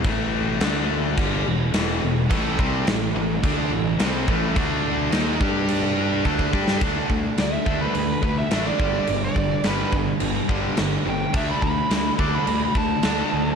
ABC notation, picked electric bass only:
X:1
M:4/4
L:1/8
Q:1/4=106
K:Dmix
V:1 name="Picked electric bass" clef=bass
A,,,2 D,,2 G,,, E,,, E,,, E,,, | A,,, C,, A,,, A,,, D,, A,,, C,, A,,, | D,,2 ^D,, G,,3 =D,, G,, | D,, D,, D,, D,, D,, D,, A,,, G,,, |
G,,, G,,, G,,, G,,, G,,, G,,, G,,, G,,, | D,, D,, D,, D,, D,, D,, D,, D,, |]